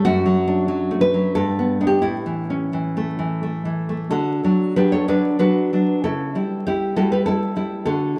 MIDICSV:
0, 0, Header, 1, 2, 480
1, 0, Start_track
1, 0, Key_signature, 2, "major"
1, 0, Tempo, 645856
1, 46, Time_signature, 3, 2, 24, 8
1, 1008, Tempo, 692042
1, 2928, Tempo, 652884
1, 3408, Tempo, 630915
1, 4848, Tempo, 607903
1, 6050, End_track
2, 0, Start_track
2, 0, Title_t, "Nylon-string guitar"
2, 0, Program_c, 0, 24
2, 35, Note_on_c, 0, 66, 107
2, 39, Note_on_c, 0, 42, 82
2, 190, Note_on_c, 0, 54, 62
2, 354, Note_on_c, 0, 62, 63
2, 498, Note_off_c, 0, 54, 0
2, 507, Note_on_c, 0, 54, 62
2, 676, Note_on_c, 0, 57, 62
2, 725, Note_off_c, 0, 66, 0
2, 751, Note_on_c, 0, 71, 97
2, 838, Note_off_c, 0, 54, 0
2, 847, Note_on_c, 0, 54, 60
2, 975, Note_off_c, 0, 42, 0
2, 993, Note_off_c, 0, 71, 0
2, 1004, Note_on_c, 0, 43, 72
2, 1004, Note_on_c, 0, 69, 83
2, 1006, Note_off_c, 0, 62, 0
2, 1007, Note_off_c, 0, 57, 0
2, 1010, Note_off_c, 0, 54, 0
2, 1169, Note_on_c, 0, 59, 54
2, 1313, Note_off_c, 0, 59, 0
2, 1320, Note_on_c, 0, 59, 51
2, 1322, Note_on_c, 0, 62, 53
2, 1343, Note_off_c, 0, 69, 0
2, 1363, Note_on_c, 0, 67, 79
2, 1464, Note_off_c, 0, 43, 0
2, 1464, Note_off_c, 0, 59, 0
2, 1464, Note_off_c, 0, 62, 0
2, 1466, Note_on_c, 0, 64, 78
2, 1473, Note_on_c, 0, 45, 65
2, 1481, Note_off_c, 0, 67, 0
2, 1635, Note_on_c, 0, 52, 50
2, 1802, Note_on_c, 0, 61, 53
2, 1954, Note_off_c, 0, 52, 0
2, 1962, Note_on_c, 0, 52, 54
2, 2126, Note_on_c, 0, 57, 53
2, 2269, Note_off_c, 0, 52, 0
2, 2278, Note_on_c, 0, 52, 51
2, 2415, Note_off_c, 0, 64, 0
2, 2436, Note_off_c, 0, 57, 0
2, 2445, Note_on_c, 0, 57, 50
2, 2529, Note_off_c, 0, 61, 0
2, 2592, Note_off_c, 0, 52, 0
2, 2600, Note_on_c, 0, 52, 48
2, 2758, Note_off_c, 0, 57, 0
2, 2766, Note_on_c, 0, 57, 49
2, 2896, Note_off_c, 0, 45, 0
2, 2915, Note_on_c, 0, 69, 80
2, 2917, Note_off_c, 0, 57, 0
2, 2919, Note_on_c, 0, 50, 59
2, 2922, Note_off_c, 0, 52, 0
2, 2924, Note_on_c, 0, 66, 62
2, 3156, Note_off_c, 0, 50, 0
2, 3163, Note_on_c, 0, 54, 48
2, 3165, Note_on_c, 0, 62, 51
2, 3376, Note_off_c, 0, 66, 0
2, 3381, Note_off_c, 0, 69, 0
2, 3389, Note_off_c, 0, 54, 0
2, 3395, Note_off_c, 0, 62, 0
2, 3397, Note_on_c, 0, 54, 45
2, 3398, Note_on_c, 0, 71, 80
2, 3403, Note_on_c, 0, 62, 49
2, 3407, Note_on_c, 0, 67, 64
2, 3516, Note_on_c, 0, 73, 79
2, 3519, Note_off_c, 0, 67, 0
2, 3523, Note_off_c, 0, 71, 0
2, 3533, Note_on_c, 0, 69, 58
2, 3629, Note_off_c, 0, 54, 0
2, 3633, Note_off_c, 0, 62, 0
2, 3637, Note_off_c, 0, 73, 0
2, 3638, Note_on_c, 0, 54, 45
2, 3640, Note_on_c, 0, 74, 78
2, 3642, Note_on_c, 0, 62, 50
2, 3643, Note_off_c, 0, 69, 0
2, 3648, Note_on_c, 0, 71, 59
2, 3864, Note_off_c, 0, 54, 0
2, 3866, Note_off_c, 0, 71, 0
2, 3870, Note_off_c, 0, 62, 0
2, 3873, Note_off_c, 0, 74, 0
2, 3873, Note_on_c, 0, 54, 43
2, 3877, Note_on_c, 0, 71, 78
2, 3879, Note_on_c, 0, 62, 50
2, 3883, Note_on_c, 0, 66, 66
2, 4122, Note_off_c, 0, 54, 0
2, 4126, Note_off_c, 0, 62, 0
2, 4131, Note_on_c, 0, 54, 42
2, 4135, Note_on_c, 0, 62, 48
2, 4334, Note_off_c, 0, 66, 0
2, 4341, Note_off_c, 0, 71, 0
2, 4346, Note_off_c, 0, 54, 0
2, 4348, Note_off_c, 0, 62, 0
2, 4367, Note_on_c, 0, 49, 56
2, 4367, Note_on_c, 0, 69, 70
2, 4377, Note_on_c, 0, 64, 49
2, 4599, Note_off_c, 0, 64, 0
2, 4602, Note_off_c, 0, 49, 0
2, 4606, Note_on_c, 0, 55, 44
2, 4610, Note_on_c, 0, 64, 47
2, 4827, Note_off_c, 0, 69, 0
2, 4834, Note_off_c, 0, 55, 0
2, 4843, Note_on_c, 0, 55, 46
2, 4844, Note_off_c, 0, 64, 0
2, 4845, Note_on_c, 0, 67, 77
2, 4854, Note_on_c, 0, 64, 58
2, 5071, Note_off_c, 0, 55, 0
2, 5075, Note_off_c, 0, 64, 0
2, 5077, Note_off_c, 0, 67, 0
2, 5080, Note_on_c, 0, 55, 44
2, 5080, Note_on_c, 0, 69, 78
2, 5084, Note_on_c, 0, 64, 48
2, 5087, Note_on_c, 0, 66, 58
2, 5198, Note_off_c, 0, 66, 0
2, 5198, Note_off_c, 0, 69, 0
2, 5201, Note_on_c, 0, 71, 74
2, 5212, Note_on_c, 0, 67, 55
2, 5309, Note_off_c, 0, 71, 0
2, 5311, Note_off_c, 0, 55, 0
2, 5312, Note_on_c, 0, 69, 77
2, 5317, Note_off_c, 0, 67, 0
2, 5319, Note_off_c, 0, 64, 0
2, 5321, Note_on_c, 0, 55, 44
2, 5329, Note_on_c, 0, 64, 55
2, 5543, Note_off_c, 0, 55, 0
2, 5544, Note_off_c, 0, 64, 0
2, 5551, Note_on_c, 0, 55, 43
2, 5556, Note_on_c, 0, 64, 47
2, 5774, Note_off_c, 0, 69, 0
2, 5775, Note_off_c, 0, 55, 0
2, 5776, Note_off_c, 0, 64, 0
2, 5784, Note_on_c, 0, 69, 76
2, 5787, Note_on_c, 0, 50, 56
2, 5794, Note_on_c, 0, 66, 62
2, 6030, Note_off_c, 0, 50, 0
2, 6050, Note_off_c, 0, 66, 0
2, 6050, Note_off_c, 0, 69, 0
2, 6050, End_track
0, 0, End_of_file